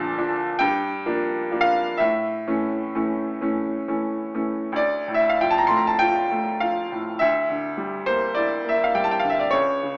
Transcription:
0.00 0.64 A#1 medium
0.00 0.64 A#2 medium
0.00 0.14 D3 soft
0.00 0.15 F3 soft
0.00 0.14 D4 medium
0.00 0.61 A5 loud
0.18 0.57 D3 soft
0.18 0.57 F3 soft
0.18 0.58 D4 medium
0.59 1.04 G2 medium
0.59 1.62 G5 medium
1.06 1.48 F3 soft
1.06 1.48 A#3 soft
1.06 1.48 D4 soft
1.51 1.95 F3 soft
1.51 1.95 A#3 soft
1.51 1.95 D4 soft
1.61 1.98 F5 medium
1.97 2.46 A2 medium
1.97 3.39 E5 medium
2.47 2.90 E3 soft
2.47 2.90 A3 soft
2.47 2.90 C#4 soft
2.95 3.37 E3 soft
2.95 3.37 A3 soft
2.95 3.37 C#4 soft
3.41 3.83 E3 soft
3.41 3.83 A3 soft
3.41 3.83 C#4 soft
3.88 4.30 E3 soft
3.88 4.30 A3 soft
3.88 4.30 C#4 soft
4.34 4.73 E3 soft
4.34 4.73 A3 soft
4.34 4.73 C#4 soft
4.72 7.15 D2 medium
4.72 5.13 D5 medium
5.08 5.57 A2 soft
5.14 5.30 E5 medium
5.29 5.41 F5 medium
5.41 5.89 F3 soft
5.41 5.51 G5 medium
5.51 5.59 A5 medium
5.58 5.67 A#5 medium
5.67 6.19 A3 soft
5.67 5.77 C6 medium
5.77 5.88 A#5 medium
5.87 6.00 A5 medium
5.99 6.50 F4 soft
5.99 6.61 G5 medium
6.31 6.79 A3 soft
6.60 7.09 F3 soft
6.60 7.20 F5 medium
6.92 7.21 A2 soft
7.19 9.48 D2 medium
7.19 8.06 E5 medium
7.50 7.96 D3 soft
7.77 8.23 G3 soft
8.06 8.53 A#3 soft
8.06 8.35 C5 medium
8.35 8.82 E4 soft
8.35 8.69 D5 medium
8.65 9.11 A#3 soft
8.65 8.84 E5 medium
8.84 8.96 F5 medium
8.94 9.41 G3 soft
8.94 9.05 G5 medium
9.04 9.12 A5 medium
9.11 9.20 G5 medium
9.19 9.29 F5 medium
9.24 9.53 D3 soft
9.30 9.40 E5 medium
9.39 9.51 D5 medium
9.51 9.97 C#2 medium
9.51 9.97 C#5 medium
9.83 9.97 C#3 soft

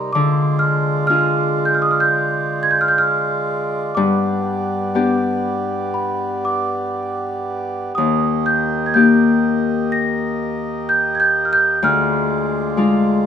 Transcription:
0.00 0.20 C3 medium
0.00 0.11 G3 medium
0.00 0.10 D#4 soft
0.00 0.11 D#4 medium
0.00 0.12 A#4 medium
0.00 0.11 C5 soft
0.00 0.18 C6 medium
0.13 4.02 D3 medium
0.13 3.93 G#3 medium
0.13 3.93 F4 medium
0.13 7.92 D5 medium
0.13 0.62 D6 medium
0.59 1.06 F6 medium
1.07 3.94 D4 soft
1.07 3.95 F4 soft
1.07 3.94 G#4 soft
1.07 1.68 F6 medium
1.65 1.75 G6 medium
1.75 1.84 F6 medium
1.82 1.92 D#6 medium
1.91 2.01 F6 medium
2.00 2.65 G6 medium
2.63 2.73 G#6 medium
2.71 2.81 G6 medium
2.81 2.91 F6 medium
2.88 2.99 G6 medium
2.98 3.99 F6 medium
3.95 7.87 G2 medium
3.95 7.93 B3 medium
3.95 11.79 G4 medium
3.95 5.99 D6 medium
4.95 8.05 B3 soft
4.95 7.93 D4 soft
4.95 7.93 G4 soft
5.94 6.46 B5 medium
6.45 8.01 D6 medium
7.95 11.87 D#2 medium
7.95 11.79 A#3 medium
7.95 8.47 D#6 medium
8.00 11.80 D#5 medium
8.46 8.89 G6 medium
8.86 8.94 G#6 medium
8.94 12.17 A#3 soft
8.94 11.79 D#4 soft
8.94 11.79 G4 soft
8.94 9.95 G6 medium
9.92 10.91 A#6 medium
10.89 11.17 G6 medium
11.15 11.19 G#6 medium
11.20 11.48 G6 medium
11.45 11.50 F6 medium
11.53 11.84 G6 medium
11.82 13.26 D2 medium
11.82 13.26 G#3 medium
11.82 13.26 F4 medium
11.82 13.26 D5 medium
11.82 13.26 F6 medium
12.77 13.26 G#3 soft
12.77 13.26 D4 soft
12.77 13.26 F4 soft

